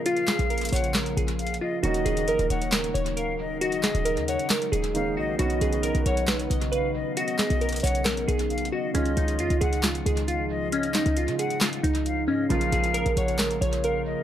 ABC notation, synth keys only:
X:1
M:4/4
L:1/8
Q:1/4=135
K:Ebm
V:1 name="Synth keys"
F A B d B A2 F | G A B d B d B2 | G A B d B A2 G | ^F A B ^c =B ^d B2 |
^F A B ^c B A2 F | D E F A F A F2 | D E F A F E2 D | F A B d B d B2 |]